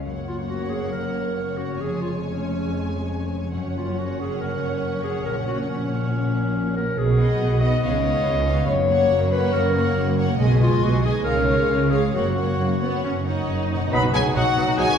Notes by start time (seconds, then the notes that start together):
Already playing: C#4
0.05 F#1 F#2 A#3 C#5 F#5
0.28 A#3 F4
0.48 F#4
0.70 C#4 G#4
0.92 C#3 A#4
1.14 A#3
1.36 F#4
1.57 C#4 F#4
1.79 F1 F2 G#3 G#4 G#5
2.01 G#3 F4
2.22 C#4 G#4
2.45 C#4
2.67 F2
2.88 G#3
3.11 G#4
3.32 C#4
3.53 F#1 F#2 C#4 C#5 F#5
3.76 A#3 F4
3.97 F#4
4.19 C#4 G#4
4.40 C#3 A#4
4.61 A#3
4.82 F#4
5.04 C#4 G#4
5.25 A#1 A#2 A#4
5.47 A#3 F#4
5.68 C#4 F#4
5.90 C#4
6.11 A#2
6.33 A#3
6.55 F#4
6.75 C#4 A#4
6.96 B1 B2 G#4
7.17 G#3 B3 D#5 F#5
7.40 B1 B2 F#4
7.61 B3 D#4 D#5 F#5
7.82 C#2 C#3 B3 C#5 F5
8.03 B3 C#5 F5
8.26 C#2 C#3 F4
8.46 B3 C#4 C#5 F5
8.67 F#1 F#2 C#5
8.89 A#3 C#5 F#5
9.12 F#1 F#2 F#4
9.32 A#3 C#4 B4 C#5 F#5
9.54 F#1 F#2 C#3 A#4
9.75 A#3 C#5 F#5
9.96 F#1 F#2 F#4
10.18 A#3 C#4 C#5 F#5
10.37 B1 B2 G#3 D#5 G#5
10.60 G#3 F4 D#5 G#5
10.81 B1 B2 F#4 G#4
11.02 G#3 D#4 G#4 D#5 G#5
11.25 C#2 C#3 G#3 A#4 C#5 F5
11.46 G#3 C#4 C#5 F5
11.68 C#2 C#3 G#4
11.90 G#3 F4 G#4 C#5 F5
12.13 F#1 F#2 A#3 F#4 C#5 F#5
12.35 A#3 C#5 F#5
12.58 F#1 F#2 A#3
12.80 B3 C#4 C#5 F#5
13.03 F#1 F#2 C#3 C#4
13.25 A#3 D#4 C#5 F#5
13.47 F#1 F#2 F#4
13.71 B2 C#4 C#5 F#5
13.79 B3 D#4
13.88 D#4 F#4
13.92 B1 B2 F#3 D#4 F#4 B4 B5 D#6
14.03 B2 D#4
14.13 B1 B2 F#3 B3 G#4 G#5 D#6
14.25 B2 D#4
14.34 B1 B2 F#3 D#4 F#4 F#5 D#6
14.57 B1 B2 F#3 B3 D#6
14.67 B2 D#4
14.77 B1 B2 F#3 D#4 F#4 G#4 G#5 D#6
14.89 B2 B3